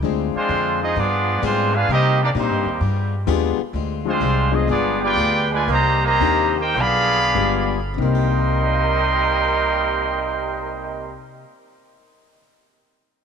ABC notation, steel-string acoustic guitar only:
X:1
M:4/4
L:1/8
Q:"Swing" 1/4=117
K:Cm
V:1 name="Steel-string acoustic guitar"
[D,A,CF] z [D,A,CF] z [G,=B,FA] z [G,B,FA] z | [C,G,B,E] z [C,G,B,E] z [G,=B,FA] z [G,B,FA] z | [D,A,CF] z [D,A,CF] z [G,=B,FA] z [G,B,FA] z | [C,B,EG] z [C,B,EG] z [G,=B,FA] z [G,B,FA] z |
[C,B,G]8- | [C,B,G]8 |]